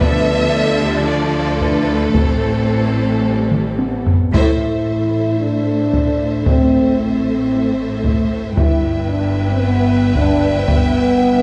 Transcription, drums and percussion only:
0.01 taiko
1.61 taiko
2.15 taiko
3.51 taiko mid
3.79 taiko high
4.06 taiko low
4.34 taiko
5.93 taiko
6.46 taiko
8.04 taiko
8.57 taiko
10.15 taiko
10.68 taiko

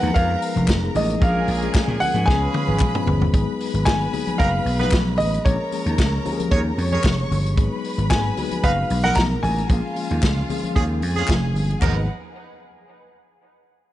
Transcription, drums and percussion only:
0.03 closed hi-hat, high conga
0.16 kick, closed hi-hat, muted conga
0.42 open hi-hat
0.56 closed hi-hat, high conga
0.68 kick, snare, clap, closed hi-hat, muted conga, high conga
0.95 open hi-hat, low conga
1.10 closed hi-hat
1.22 kick, closed hi-hat
1.35 high conga
1.48 open hi-hat, muted conga
1.62 closed hi-hat
1.74 kick, snare, clap, closed hi-hat, muted conga
1.88 low conga
2.01 open hi-hat, low conga
2.15 closed hi-hat, high conga
2.28 kick, snare
2.54 high tom
2.68 high conga
2.79 kick, clap, mid tom, muted conga, high conga
2.95 mid tom
3.06 floor tom, muted conga, low conga
3.22 floor tom
3.34 kick, closed hi-hat, muted conga
3.60 open hi-hat
3.74 closed hi-hat
3.86 kick, snare, clap, closed hi-hat
4.13 open hi-hat, low conga
4.27 closed hi-hat, high conga
4.40 kick, closed hi-hat, muted conga
4.65 open hi-hat, muted conga
4.80 snare, closed hi-hat, high conga
4.91 kick, snare, clap, closed hi-hat, high conga
5.19 open hi-hat, muted conga, low conga
5.34 closed hi-hat
5.46 kick, closed hi-hat
5.72 open hi-hat, muted conga
5.86 closed hi-hat
5.98 kick, snare, clap, closed hi-hat
6.26 open hi-hat, muted conga, low conga
6.40 closed hi-hat, high conga
6.52 kick, closed hi-hat
6.78 open hi-hat
6.92 closed hi-hat, high conga
7.04 kick, snare, clap, closed hi-hat, high conga
7.32 open hi-hat, muted conga, low conga
7.46 closed hi-hat
7.58 kick, closed hi-hat, muted conga
7.84 open hi-hat
7.99 closed hi-hat
8.10 kick, snare, clap, closed hi-hat, muted conga
8.37 open hi-hat, muted conga, low conga
8.51 closed hi-hat, high conga
8.64 kick, closed hi-hat
8.90 open hi-hat, muted conga
9.04 snare, closed hi-hat, high conga
9.16 kick, snare, clap, closed hi-hat, muted conga, high conga
9.43 open hi-hat, muted conga, low conga
9.58 closed hi-hat
9.69 kick, closed hi-hat
9.96 open hi-hat
10.11 closed hi-hat
10.22 kick, snare, clap, closed hi-hat
10.37 low conga
10.50 open hi-hat, low conga
10.63 closed hi-hat, high conga
10.76 kick, closed hi-hat, muted conga
11.02 open hi-hat, muted conga
11.17 snare, closed hi-hat, high conga
11.28 kick, snare, clap, closed hi-hat, muted conga, high conga
11.55 open hi-hat, muted conga, low conga
11.71 closed hi-hat
11.82 kick, clap, floor tom, china, high conga

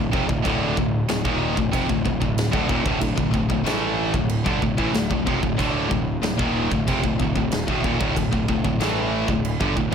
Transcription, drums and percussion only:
0.13 kick
0.29 kick
0.45 kick, crash
0.77 kick
1.09 snare, crash
1.25 kick
1.57 kick
1.73 kick, crash
1.89 kick
2.06 kick
2.22 kick
2.38 snare, crash
2.53 kick
2.69 kick
2.86 kick
3.01 kick, crash
3.18 kick
3.34 kick
3.50 kick
3.66 snare, crash
4.14 kick
4.29 crash
4.46 kick
4.62 kick
4.78 kick
4.94 snare, crash
5.11 kick
5.27 kick
5.43 kick
5.59 kick, crash
5.91 kick
6.23 snare, crash
6.39 kick
6.72 kick
6.88 kick, crash
7.04 kick
7.20 kick
7.36 kick
7.51 snare, crash
7.68 kick
7.84 kick
8.01 kick
8.16 kick, crash
8.33 kick
8.48 kick
8.65 kick
8.81 snare, crash
9.28 kick
9.45 crash
9.61 kick
9.77 kick

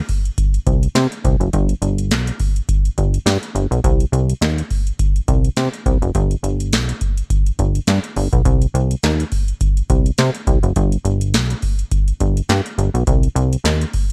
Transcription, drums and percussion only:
0.09 kick, open hi-hat
0.25 closed hi-hat
0.38 kick, closed hi-hat
0.54 closed hi-hat
0.67 kick, closed hi-hat
0.83 closed hi-hat
0.95 snare, clap, closed hi-hat
1.12 closed hi-hat
1.24 kick, closed hi-hat
1.41 closed hi-hat
1.53 kick, closed hi-hat
1.69 closed hi-hat
1.82 closed hi-hat
1.98 closed hi-hat
2.11 snare, clap, closed hi-hat
2.27 closed hi-hat
2.40 kick, open hi-hat
2.56 closed hi-hat
2.69 kick, closed hi-hat
2.85 closed hi-hat
2.98 kick, closed hi-hat
3.14 closed hi-hat
3.26 snare, clap, closed hi-hat
3.43 closed hi-hat
3.56 closed hi-hat
3.72 closed hi-hat
3.84 kick, closed hi-hat
4.00 closed hi-hat
4.13 closed hi-hat
4.30 closed hi-hat
4.42 snare, clap, closed hi-hat
4.58 closed hi-hat
4.71 kick, open hi-hat
4.87 closed hi-hat
4.99 kick, closed hi-hat
5.16 closed hi-hat
5.28 kick, closed hi-hat
5.45 closed hi-hat
5.57 snare, clap, closed hi-hat
5.74 closed hi-hat
5.86 kick, closed hi-hat
6.02 closed hi-hat
6.15 kick, closed hi-hat
6.31 closed hi-hat
6.44 closed hi-hat
6.60 closed hi-hat
6.73 snare, clap, closed hi-hat
6.89 closed hi-hat
7.01 kick, closed hi-hat
7.17 closed hi-hat
7.30 kick, closed hi-hat
7.46 closed hi-hat
7.59 kick, closed hi-hat
7.75 closed hi-hat
7.87 snare, clap, closed hi-hat
8.04 closed hi-hat
8.16 open hi-hat
8.33 kick, closed hi-hat
8.45 kick, closed hi-hat
8.62 closed hi-hat
8.75 closed hi-hat
8.91 closed hi-hat
9.03 snare, clap, closed hi-hat
9.20 closed hi-hat
9.32 kick, open hi-hat
9.48 closed hi-hat
9.61 kick, closed hi-hat
9.77 closed hi-hat
9.90 kick, closed hi-hat
10.06 closed hi-hat
10.18 snare, clap, closed hi-hat
10.35 closed hi-hat
10.47 kick, closed hi-hat
10.63 closed hi-hat
10.76 kick, closed hi-hat
10.92 closed hi-hat
11.05 closed hi-hat
11.21 closed hi-hat
11.34 snare, clap, closed hi-hat
11.50 closed hi-hat
11.62 kick, open hi-hat
11.79 closed hi-hat
11.91 kick, closed hi-hat
12.08 closed hi-hat
12.20 kick, closed hi-hat
12.37 closed hi-hat
12.49 snare, clap, closed hi-hat
12.66 closed hi-hat
12.79 closed hi-hat
12.95 closed hi-hat
13.07 kick, closed hi-hat
13.23 closed hi-hat
13.36 closed hi-hat
13.53 closed hi-hat
13.65 snare, clap, closed hi-hat
13.81 closed hi-hat
13.93 kick, open hi-hat

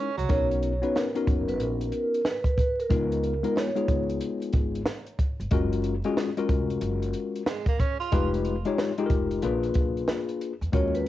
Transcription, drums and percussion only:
0.19 closed hi-hat
0.29 kick, closed hi-hat
0.51 closed hi-hat
0.63 closed hi-hat
0.83 closed hi-hat
0.96 snare
1.15 closed hi-hat
1.27 kick, closed hi-hat
1.49 closed hi-hat
1.60 closed hi-hat
1.81 closed hi-hat
1.92 closed hi-hat
2.14 closed hi-hat
2.25 snare
2.44 kick, closed hi-hat
2.58 kick, closed hi-hat
2.80 closed hi-hat
2.90 kick, closed hi-hat
3.12 closed hi-hat
3.23 closed hi-hat
3.44 closed hi-hat
3.57 snare
3.76 closed hi-hat
3.88 kick, closed hi-hat
4.09 closed hi-hat
4.21 closed hi-hat
4.42 closed hi-hat
4.53 kick, closed hi-hat
4.75 closed hi-hat
4.86 snare
5.06 closed hi-hat
5.19 kick, closed hi-hat
5.40 closed hi-hat
5.51 kick, closed hi-hat
5.73 closed hi-hat
5.84 closed hi-hat
6.04 closed hi-hat
6.17 snare
6.37 closed hi-hat
6.49 kick, closed hi-hat
6.70 closed hi-hat
6.81 closed hi-hat
7.02 closed hi-hat
7.13 closed hi-hat
7.35 closed hi-hat
7.46 snare
7.66 kick, closed hi-hat
7.80 kick, closed hi-hat
8.01 closed hi-hat
8.12 kick, closed hi-hat
8.34 closed hi-hat
8.45 closed hi-hat
8.65 closed hi-hat
8.78 snare
8.98 closed hi-hat
9.10 kick, closed hi-hat
9.31 closed hi-hat
9.42 closed hi-hat
9.63 closed hi-hat
9.74 kick, closed hi-hat
9.97 closed hi-hat
10.08 snare
10.29 closed hi-hat
10.41 closed hi-hat
10.62 closed hi-hat
10.73 kick, closed hi-hat
10.95 closed hi-hat

